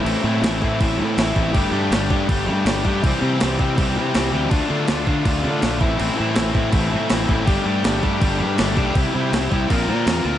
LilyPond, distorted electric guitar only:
\new Staff \with { instrumentName = "Distorted electric guitar" } { \time 4/4 \key c \mixolydian \tempo 4 = 162 <a, e a c' e'>8 <a, e a c' e'>8 <a, e a c' e'>8 <a, e a c' e'>8 <a, e a c' e'>8 <a, e a c' e'>8 <a, e a c' e'>8 <a, e a c' e'>8 | <g a d' g'>8 <g a d' g'>8 <g a d' g'>8 <g a d' g'>8 <g a d' g'>8 <g a d' g'>8 <g a d' g'>8 <g a d' g'>8 | <c e g c' g'>8 <c e g c' g'>8 <c e g c' g'>8 <c e g c' g'>8 <c e g c' g'>8 <c e g c' g'>8 <c e g c' g'>8 <c e g c' g'>8 | <d a d' f'>8 <d a d' f'>8 <d a d' f'>8 <d a d' f'>8 <d a d' f'>8 <d a d' f'>8 <d a d' f'>8 <a, e a c' e'>8 |
<a, e a c' e'>8 <a, e a c' e'>8 <a, e a c' e'>8 <a, e a c' e'>8 <a, e a c' e'>8 <a, e a c' e'>8 <a, e a c' e'>8 <a, e a c' e'>8 | <g a d' g'>8 <g a d' g'>8 <g a d' g'>8 <g a d' g'>8 <g a d' g'>8 <g a d' g'>8 <g a d' g'>8 <g a d' g'>8 | <c g c' e' g'>8 <c g c' e' g'>8 <c g c' e' g'>8 <c g c' e' g'>8 <bes c' f' bes'>8 <bes c' f' bes'>8 <bes c' f' bes'>8 <bes c' f' bes'>8 | }